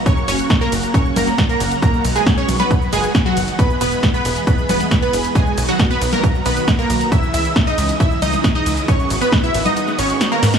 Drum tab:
RD |--x---x---x---x-|--x---x---x---x-|--x---x---x---x-|--x---x---x---x-|
HH |x-oxx-oxx-oxx-ox|x-oxx-oxx-oxx-ox|x-oxx-oxx-oxx-ox|x-oxx-oxx-oxx-ox|
SH |xxxxxxxxxxxxxxxx|xxxxxxxxxxxxxxxx|xxxxxxxxxxxxxxxx|xxxxxxxxxxxxxxxx|
SD |----o------oo---|----o-------o---|----o------oo---|----o-------o---|
CG |----------o-----|------oo--------|----------o-----|-------o--------|
BD |o---o---o---o---|o---o---o---o---|o---o---o---o---|o---o---o---o---|

RD |--x---x---x---x-|--x---x---x---x-|
HH |x-oxx-oxx-oxx-ox|x-oxx-oxx-oxx-ox|
SH |xxxxxxxxxxxxxxxx|xxxxxxxxxxxxxxxx|
SD |----o------oo---|----o----o--o-oo|
CG |----------o-----|-------o--------|
BD |o---o---o---o---|o---o-----------|